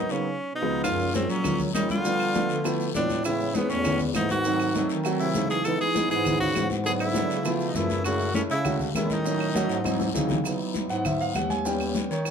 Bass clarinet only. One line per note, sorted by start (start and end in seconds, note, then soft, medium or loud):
0.09 0.37 C#3 medium
0.84 1.26 F#2 medium
1.29 1.71 F#3 medium
1.75 2.44 G3 medium
2.50 2.92 D3 medium
2.95 3.64 A2 medium
3.70 4.12 E2 medium
4.15 4.84 G#2 medium
4.89 5.32 D#3 medium
5.35 5.78 C#3 medium
6.11 6.52 G#2 medium
6.55 7.24 G#2 medium
7.30 7.72 C#3 medium
7.75 8.45 F#2 medium
8.50 8.92 C#3 medium
8.94 9.64 D#3 medium
9.69 10.12 G#2 medium
10.15 10.58 C#3 medium
10.90 11.32 G#2 medium
11.35 12.05 D#2 medium
12.10 12.31 D#3 medium